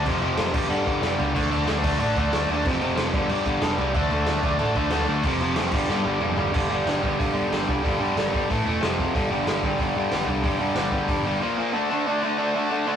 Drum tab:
CC |xxxxxxxx|xxxxxxxx|xxxxxxxx|xxxxxxxx|
HH |--------|--------|--------|--------|
SD |--o---o-|--o---o-|--o---o-|--o---o-|
T2 |--------|--------|--------|--------|
FT |--------|--------|--------|--------|
BD |o--o-o--|o--o-o--|o--o-o--|o--o-o--|

CC |xxxx----|x-------|--------|--------|
HH |--------|--o-o-o-|o-o-o-o-|o-o-o-o-|
SD |--o-o---|--o---o-|--o---o-|--o---o-|
T2 |------o-|--------|--------|--------|
FT |-------o|--------|--------|--------|
BD |o--o----|o--oo--o|o--oo--o|o--oo--o|

CC |--------|--------|
HH |o-o-o---|--------|
SD |--o-----|--------|
T2 |--------|--------|
FT |--------|--------|
BD |o--oo---|--------|